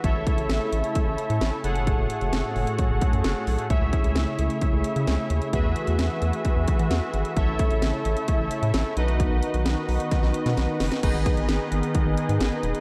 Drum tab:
CC |----------------|----------------|----------------|----------------|
HH |x-xxx-xxx-xxx-xx|x-xxx-oxx-xxx-ox|x-xxx-xxx-xxx-xx|x-xxx-xxx-xxx-xx|
SD |----o-------o---|----o-------o---|----o-------o---|----o-------o---|
BD |o-o-----o-------|o-------o-o-----|o-o-----o-------|o-------o-o-----|

CC |----------------|----------------|x---------------|
HH |x-xxx-xxx-xxx-xx|x-xxx-oxx-xxx-ox|x-xxx-xxx-xxx-xx|
SD |----o-------o---|----o---oo-oo-oo|----o-------o---|
BD |o-o-----o-------|o-------o-------|o-o-----o-------|